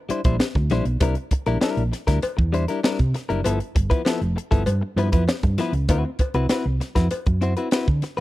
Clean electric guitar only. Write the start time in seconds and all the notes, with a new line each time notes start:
0.09 G3 D4 E4 C5
0.25 G3 D4 E4 C5
0.56 muted clean electric guitar stroke
0.71 G3 D4 E4 C5
1.01 G3 D4 E4 A#4
1.32 muted clean electric guitar stroke
1.47 G3 D4 E4 A#4
1.61 G3 D4 E4 A#4
1.92 muted clean electric guitar stroke
2.07 G3 D4 E4 A#4
2.23 muted clean electric guitar stroke
2.37 muted clean electric guitar stroke
2.53 G3 D4 E4 C5
2.68 G3 D4 E4 A#4
2.84 G3 D4 E4 A#4
3.14 muted clean electric guitar stroke
3.29 G3 D4 E4 A#4
3.44 F3 B3 E4 A4
3.75 muted clean electric guitar stroke
3.90 F3 B3 E4 B4
4.05 F3 B3 E4 A4
4.36 muted clean electric guitar stroke
4.51 F3 B3 E4 A4
4.67 muted clean electric guitar stroke
4.81 muted clean electric guitar stroke
4.97 F3 B3 E4 B4
5.12 F3 B3 E4 B4
5.44 muted clean electric guitar stroke
5.58 F3 B3 E4 B4
5.89 C4 E4 F#4 B4
6.05 muted clean electric guitar stroke
6.20 muted clean electric guitar stroke
6.35 C4 E4 F#4 B4
6.50 C4 E4 F#4 B4
6.81 muted clean electric guitar stroke
6.95 C4 E4 F#4 B4
7.11 muted clean electric guitar stroke
7.27 muted clean electric guitar stroke
7.41 C4 E4 F#4 C5
7.57 C4 E4 F#4 B4
7.72 C4 E4 F#4 B4
8.03 muted clean electric guitar stroke
8.17 B4